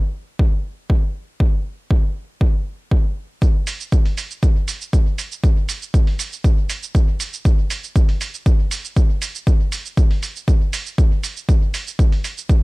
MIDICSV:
0, 0, Header, 1, 2, 480
1, 0, Start_track
1, 0, Tempo, 504202
1, 1336, Time_signature, 4, 2, 24, 8
1, 12024, End_track
2, 0, Start_track
2, 0, Title_t, "Drums"
2, 375, Note_on_c, 9, 36, 106
2, 470, Note_off_c, 9, 36, 0
2, 855, Note_on_c, 9, 36, 99
2, 950, Note_off_c, 9, 36, 0
2, 1334, Note_on_c, 9, 36, 106
2, 1430, Note_off_c, 9, 36, 0
2, 1814, Note_on_c, 9, 36, 113
2, 1909, Note_off_c, 9, 36, 0
2, 2294, Note_on_c, 9, 36, 111
2, 2389, Note_off_c, 9, 36, 0
2, 2775, Note_on_c, 9, 36, 106
2, 2870, Note_off_c, 9, 36, 0
2, 3255, Note_on_c, 9, 36, 115
2, 3255, Note_on_c, 9, 82, 31
2, 3350, Note_off_c, 9, 36, 0
2, 3350, Note_off_c, 9, 82, 0
2, 3494, Note_on_c, 9, 46, 83
2, 3494, Note_on_c, 9, 82, 71
2, 3589, Note_off_c, 9, 46, 0
2, 3589, Note_off_c, 9, 82, 0
2, 3620, Note_on_c, 9, 82, 39
2, 3715, Note_off_c, 9, 82, 0
2, 3735, Note_on_c, 9, 36, 118
2, 3735, Note_on_c, 9, 82, 30
2, 3830, Note_off_c, 9, 36, 0
2, 3830, Note_off_c, 9, 82, 0
2, 3861, Note_on_c, 9, 46, 33
2, 3956, Note_off_c, 9, 46, 0
2, 3975, Note_on_c, 9, 46, 70
2, 3975, Note_on_c, 9, 82, 72
2, 4070, Note_off_c, 9, 46, 0
2, 4070, Note_off_c, 9, 82, 0
2, 4100, Note_on_c, 9, 82, 40
2, 4195, Note_off_c, 9, 82, 0
2, 4214, Note_on_c, 9, 82, 31
2, 4215, Note_on_c, 9, 36, 115
2, 4310, Note_off_c, 9, 36, 0
2, 4310, Note_off_c, 9, 82, 0
2, 4454, Note_on_c, 9, 46, 83
2, 4454, Note_on_c, 9, 82, 73
2, 4549, Note_off_c, 9, 46, 0
2, 4549, Note_off_c, 9, 82, 0
2, 4581, Note_on_c, 9, 82, 40
2, 4676, Note_off_c, 9, 82, 0
2, 4694, Note_on_c, 9, 82, 30
2, 4695, Note_on_c, 9, 36, 112
2, 4790, Note_off_c, 9, 36, 0
2, 4790, Note_off_c, 9, 82, 0
2, 4935, Note_on_c, 9, 46, 68
2, 4935, Note_on_c, 9, 82, 72
2, 5030, Note_off_c, 9, 46, 0
2, 5030, Note_off_c, 9, 82, 0
2, 5061, Note_on_c, 9, 82, 39
2, 5156, Note_off_c, 9, 82, 0
2, 5175, Note_on_c, 9, 36, 122
2, 5175, Note_on_c, 9, 82, 29
2, 5270, Note_off_c, 9, 36, 0
2, 5270, Note_off_c, 9, 82, 0
2, 5414, Note_on_c, 9, 46, 85
2, 5414, Note_on_c, 9, 82, 71
2, 5510, Note_off_c, 9, 46, 0
2, 5510, Note_off_c, 9, 82, 0
2, 5541, Note_on_c, 9, 82, 38
2, 5637, Note_off_c, 9, 82, 0
2, 5655, Note_on_c, 9, 36, 123
2, 5655, Note_on_c, 9, 82, 31
2, 5750, Note_off_c, 9, 36, 0
2, 5750, Note_off_c, 9, 82, 0
2, 5781, Note_on_c, 9, 46, 32
2, 5876, Note_off_c, 9, 46, 0
2, 5895, Note_on_c, 9, 46, 71
2, 5895, Note_on_c, 9, 82, 71
2, 5990, Note_off_c, 9, 46, 0
2, 5990, Note_off_c, 9, 82, 0
2, 6020, Note_on_c, 9, 82, 41
2, 6116, Note_off_c, 9, 82, 0
2, 6134, Note_on_c, 9, 82, 30
2, 6135, Note_on_c, 9, 36, 121
2, 6229, Note_off_c, 9, 82, 0
2, 6230, Note_off_c, 9, 36, 0
2, 6374, Note_on_c, 9, 46, 89
2, 6374, Note_on_c, 9, 82, 73
2, 6469, Note_off_c, 9, 46, 0
2, 6469, Note_off_c, 9, 82, 0
2, 6500, Note_on_c, 9, 82, 42
2, 6595, Note_off_c, 9, 82, 0
2, 6615, Note_on_c, 9, 36, 114
2, 6615, Note_on_c, 9, 82, 29
2, 6710, Note_off_c, 9, 36, 0
2, 6710, Note_off_c, 9, 82, 0
2, 6854, Note_on_c, 9, 46, 73
2, 6854, Note_on_c, 9, 82, 75
2, 6949, Note_off_c, 9, 46, 0
2, 6949, Note_off_c, 9, 82, 0
2, 6979, Note_on_c, 9, 82, 41
2, 7074, Note_off_c, 9, 82, 0
2, 7092, Note_on_c, 9, 82, 29
2, 7095, Note_on_c, 9, 36, 124
2, 7188, Note_off_c, 9, 82, 0
2, 7190, Note_off_c, 9, 36, 0
2, 7334, Note_on_c, 9, 46, 85
2, 7334, Note_on_c, 9, 82, 68
2, 7429, Note_off_c, 9, 46, 0
2, 7429, Note_off_c, 9, 82, 0
2, 7459, Note_on_c, 9, 82, 40
2, 7554, Note_off_c, 9, 82, 0
2, 7574, Note_on_c, 9, 82, 31
2, 7575, Note_on_c, 9, 36, 127
2, 7670, Note_off_c, 9, 36, 0
2, 7670, Note_off_c, 9, 82, 0
2, 7700, Note_on_c, 9, 46, 32
2, 7795, Note_off_c, 9, 46, 0
2, 7815, Note_on_c, 9, 46, 74
2, 7815, Note_on_c, 9, 82, 67
2, 7910, Note_off_c, 9, 46, 0
2, 7910, Note_off_c, 9, 82, 0
2, 7940, Note_on_c, 9, 82, 39
2, 8035, Note_off_c, 9, 82, 0
2, 8055, Note_on_c, 9, 36, 127
2, 8055, Note_on_c, 9, 82, 30
2, 8150, Note_off_c, 9, 36, 0
2, 8150, Note_off_c, 9, 82, 0
2, 8294, Note_on_c, 9, 46, 88
2, 8294, Note_on_c, 9, 82, 71
2, 8389, Note_off_c, 9, 46, 0
2, 8389, Note_off_c, 9, 82, 0
2, 8421, Note_on_c, 9, 82, 41
2, 8516, Note_off_c, 9, 82, 0
2, 8534, Note_on_c, 9, 82, 29
2, 8535, Note_on_c, 9, 36, 119
2, 8630, Note_off_c, 9, 36, 0
2, 8630, Note_off_c, 9, 82, 0
2, 8774, Note_on_c, 9, 46, 73
2, 8774, Note_on_c, 9, 82, 73
2, 8870, Note_off_c, 9, 46, 0
2, 8870, Note_off_c, 9, 82, 0
2, 8901, Note_on_c, 9, 82, 39
2, 8996, Note_off_c, 9, 82, 0
2, 9015, Note_on_c, 9, 36, 120
2, 9015, Note_on_c, 9, 82, 28
2, 9110, Note_off_c, 9, 36, 0
2, 9111, Note_off_c, 9, 82, 0
2, 9255, Note_on_c, 9, 46, 82
2, 9255, Note_on_c, 9, 82, 66
2, 9350, Note_off_c, 9, 46, 0
2, 9350, Note_off_c, 9, 82, 0
2, 9382, Note_on_c, 9, 82, 37
2, 9477, Note_off_c, 9, 82, 0
2, 9495, Note_on_c, 9, 36, 127
2, 9495, Note_on_c, 9, 82, 28
2, 9590, Note_off_c, 9, 36, 0
2, 9590, Note_off_c, 9, 82, 0
2, 9622, Note_on_c, 9, 46, 31
2, 9717, Note_off_c, 9, 46, 0
2, 9736, Note_on_c, 9, 46, 74
2, 9736, Note_on_c, 9, 82, 69
2, 9831, Note_off_c, 9, 46, 0
2, 9831, Note_off_c, 9, 82, 0
2, 9862, Note_on_c, 9, 82, 38
2, 9957, Note_off_c, 9, 82, 0
2, 9975, Note_on_c, 9, 36, 117
2, 9976, Note_on_c, 9, 82, 29
2, 10071, Note_off_c, 9, 36, 0
2, 10072, Note_off_c, 9, 82, 0
2, 10216, Note_on_c, 9, 46, 91
2, 10216, Note_on_c, 9, 82, 69
2, 10311, Note_off_c, 9, 46, 0
2, 10311, Note_off_c, 9, 82, 0
2, 10340, Note_on_c, 9, 82, 39
2, 10436, Note_off_c, 9, 82, 0
2, 10456, Note_on_c, 9, 36, 120
2, 10456, Note_on_c, 9, 82, 28
2, 10551, Note_off_c, 9, 36, 0
2, 10551, Note_off_c, 9, 82, 0
2, 10696, Note_on_c, 9, 46, 74
2, 10696, Note_on_c, 9, 82, 67
2, 10791, Note_off_c, 9, 46, 0
2, 10791, Note_off_c, 9, 82, 0
2, 10822, Note_on_c, 9, 82, 36
2, 10917, Note_off_c, 9, 82, 0
2, 10936, Note_on_c, 9, 36, 122
2, 10936, Note_on_c, 9, 82, 28
2, 11031, Note_off_c, 9, 36, 0
2, 11031, Note_off_c, 9, 82, 0
2, 11176, Note_on_c, 9, 46, 81
2, 11176, Note_on_c, 9, 82, 63
2, 11271, Note_off_c, 9, 46, 0
2, 11271, Note_off_c, 9, 82, 0
2, 11302, Note_on_c, 9, 82, 36
2, 11397, Note_off_c, 9, 82, 0
2, 11416, Note_on_c, 9, 36, 123
2, 11417, Note_on_c, 9, 82, 29
2, 11511, Note_off_c, 9, 36, 0
2, 11512, Note_off_c, 9, 82, 0
2, 11542, Note_on_c, 9, 46, 31
2, 11637, Note_off_c, 9, 46, 0
2, 11656, Note_on_c, 9, 46, 70
2, 11656, Note_on_c, 9, 82, 64
2, 11751, Note_off_c, 9, 46, 0
2, 11751, Note_off_c, 9, 82, 0
2, 11782, Note_on_c, 9, 82, 38
2, 11877, Note_off_c, 9, 82, 0
2, 11895, Note_on_c, 9, 36, 119
2, 11896, Note_on_c, 9, 82, 29
2, 11990, Note_off_c, 9, 36, 0
2, 11991, Note_off_c, 9, 82, 0
2, 12024, End_track
0, 0, End_of_file